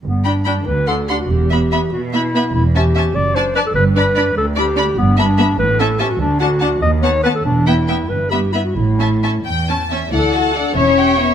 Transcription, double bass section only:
\new Staff \with { instrumentName = "Double bass section" } { \clef bass \time 6/8 \key g \major \tempo 4. = 96 g,,4 r8 d,4 r8 | e,,4 r2 | e,,4 r8 fis,,4 r8 | g,,4 r2 |
\key d \major g,,4 r8 a,,4 r8 | d,4 r8 dis,4 r8 | e,,4 r8 g,,4 r8 | a,,4 r2 |
d,4. e,,4. | }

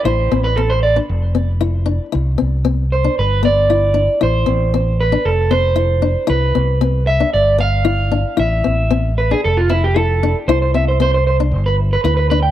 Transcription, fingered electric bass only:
\new Staff \with { instrumentName = "Fingered electric bass" } { \clef bass \time 4/4 \key c \major \tempo 4 = 115 a,,8 a,,4. f,,2 | c,8 c,4. g,,2 | a,,8 a,,4. f,,2 | c,8 c,4. g,,2 |
a,,8 a,,4. f,,2 | c,2 g,,4 d,4 | }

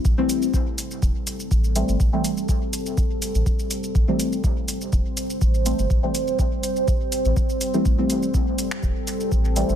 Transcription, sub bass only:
\new Staff \with { instrumentName = "Sub bass" } { \clef bass \time 4/4 \key a \minor \tempo 4 = 123 a,,16 r4. r16 e,,16 r8. a,,8. g,,16 | a,,16 r2 r8 a,,16 r4 | a,,16 r4. r16 e,,16 r8. a,,8. g,,16 | a,,16 r2 r8 a,,16 r4 |
a,,16 r4. r16 e,,16 r8. a,,8. g,,16 | }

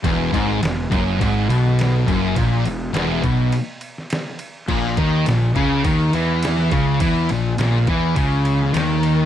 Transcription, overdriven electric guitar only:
\new Staff \with { instrumentName = "Overdriven electric guitar" } { \clef bass \time 4/4 \key cis \dorian \tempo 4 = 104 e,8 gis,8 e,8 fis,8 gis,8 b,4 fis,8 | ais,8 e,8 e,8 b,8 r2 | ais,8 dis8 ais,8 cis8 dis8 e4 cis8 | e8 ais,8 ais,8 e8 cis4 dis4 | }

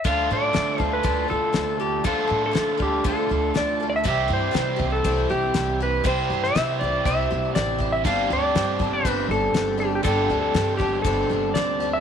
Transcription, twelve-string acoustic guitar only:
\new Staff \with { instrumentName = "Twelve-string acoustic guitar" } { \time 4/4 \key d \minor \tempo 4 = 120 <d f d' f' a'>8 <d' f' a'>8 <f d' f' a'>8 <d' f' a'>8 <d f d' f' a'>8 <d' f' a'>8 <f d' f' a'>8 <d' f' a'>8 | <d f d' f' a'>8 <d' f' a'>8 <f d' f' a'>8 <d' f' a'>8 <d f d' f' a'>8 <d' f' a'>8 <f d' f' a'>8 <d' f' a'>8 | <c g c' e' g'>8 <c' e' g'>8 <g c' e' g'>8 <c' e' g'>8 <c g c' e' g'>8 <c' e' g'>8 <g c' e' g'>8 <c' e' g'>8 | <c g c' e' g'>8 <c' e' g'>8 <g c' e' g'>8 <c' e' g'>8 <c g c' e' g'>8 <c' e' g'>8 <g c' e' g'>8 <c' e' g'>8 |
<g, d g c' d' g'>8 <g c' d' g'>8 <g c' d' g'>8 <g c' d' g'>8 <g, d g c' d' g'>8 <g c' d' g'>8 <g c' d' g'>8 <g c' d' g'>8 | <g, d g c' d' g'>8 <g c' d' g'>8 <g c' d' g'>8 <g c' d' g'>8 <g, d g c' d' g'>8 <g c' d' g'>8 <g c' d' g'>8 <g c' d' g'>8 | }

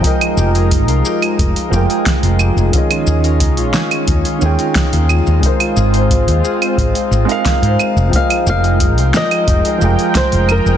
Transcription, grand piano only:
\new Staff \with { instrumentName = "Grand piano" } { \time 4/4 \key f \minor \tempo 4 = 89 <f aes f' bes' ees'' g''>2~ <f aes f' bes' ees'' g''>8 <f aes f' bes' g''>4. | <ees des' f' aes' ees''>2~ <ees des' f' aes' ees''>8 <ees des' f' aes' g''>4. | <aes ees' f' bes' c''>2~ <aes ees' f' bes' c''>8 r16 <aes ees' f' bes' f''>4~ <aes ees' f' bes' f''>16 | <f aes f' bes' ees'' g''>2~ <f aes f' bes' ees'' g''>8 <f aes f' bes' g''>4. | }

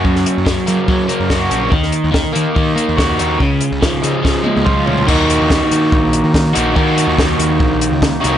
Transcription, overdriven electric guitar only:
\new Staff \with { instrumentName = "Overdriven electric guitar" } { \time 4/4 \key dis \minor \tempo 4 = 143 <fis, fis ais cis' fis'>4 fis8 ais8 fis8 ais8 fis'8 cis'8 | dis4 dis8 ais8 dis8 ais8 fis'8 dis'8 | cis4 eis8 gis8 eis8 gis8 eis'8 cis'8 | <dis ais dis' fis'>2.~ <dis ais dis' fis'>8 <dis ais dis' fis'>8 |
<dis ais dis' fis'>2.~ <dis ais dis' fis'>8 <dis ais dis' fis'>8 | }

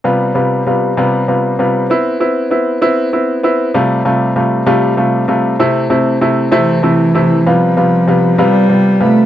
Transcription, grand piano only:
\new Staff \with { instrumentName = "Grand piano" } { \time 6/8 \key g \mixolydian \tempo 4. = 65 <c g b f'>8 <c g b f'>8 <c g b f'>8 <c g b f'>8 <c g b f'>8 <c g b f'>8 | <b c' e'>8 <b c' e'>8 <b c' e'>8 <b c' e'>8 <b c' e'>8 <b c' e'>8 | <c g a f'>8 <c g a f'>8 <c g a f'>8 <c g a f'>8 <c g a f'>8 <c g a f'>8 | <c a c' e'>8 <c a c' e'>8 <c a c' e'>8 <c a c' e'>8 <c a c' e'>8 <c a c' e'>8 |
<c g b f'>8 <c g b f'>8 <c g b f'>8 <c g b f'>8 <c g b f'>8 <c g b f'>8 | }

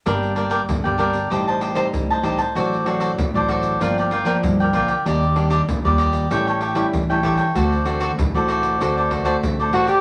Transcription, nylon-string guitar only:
\new Staff \with { instrumentName = "Nylon-string guitar" } { \time 4/4 \key g \minor \tempo 4 = 96 << { <g bes d'>8 <g bes d'>8 r16 <g bes d'>16 <g bes d'>16 r16 <g c' ees'>8. <g c' ees'>8. <g c' ees'>16 r16 | <fis c' d'>16 r16 <fis c' d'>8. <fis c' d'>8. <f bes d'>8 r16 <f bes d'>8. <f bes d'>16 r16 | <g bes d'>16 r16 <g bes d'>8 r16 <g bes d'>8. <g cis' e'>8 r16 <g cis' e'>8 <g cis' e'>16 <g cis' e'>16 r16 | <a c' fis'>16 r16 <a c' fis'>8 r16 <a c' fis'>8. <a c' fis'>8. <a c' fis'>8. <a c' fis'>16 r16 | } \\ { g,4 d4 a,4 a,4 | a,4 a,4 g,4 d4 | ees4 bes,4 a,4 e4 | d4 a,4 d4 a,4 | } >> }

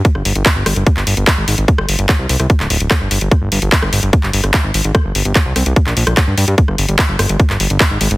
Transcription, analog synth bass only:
\new Staff \with { instrumentName = "Analog synth bass" } { \clef bass \time 4/4 \key g \phrygian \tempo 4 = 147 r16 g,,16 g,,16 g,,16 r16 g,,16 g,,16 g,,16 r16 g,,16 g,,16 g,,16 r16 aes,,16 aes,,16 aes,,16 | r16 g,,16 g,,16 g,,16 r16 c,16 c,16 c,16 r16 d,,16 d,,16 d,,16 r16 g,,16 g,,16 g,,16 | r16 g,,16 g,,16 g,,16 r16 g,,16 g,,16 g,,16 r16 g,,16 g,,16 g,,16 r16 aes,,16 aes,,16 aes,,16 | r16 g,,16 g,,16 g,,16 r16 c,16 c,16 c,16 r16 bes,,16 bes,,16 bes,,16 r16 g,16 g,16 g,16 |
r16 g,,16 g,,16 g,,16 r16 g,,16 g,,16 g,,16 r16 g,,16 g,,16 g,,16 r16 aes,,16 aes,,16 aes,,16 | }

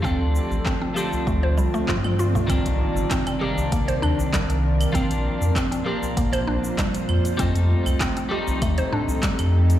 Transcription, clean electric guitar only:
\new Staff \with { instrumentName = "Clean electric guitar" } { \time 4/4 \key c \dorian \tempo 4 = 98 <f a c' d'>4. <f a c' d'>2~ <f a c' d'>8 | <ees g bes d'>4. <ees g bes d'>2~ <ees g bes d'>8 | <f bes c' d'>4. <f bes c' d'>2~ <f bes c' d'>8 | <g a c' ees'>4. <g a c' ees'>2~ <g a c' ees'>8 | }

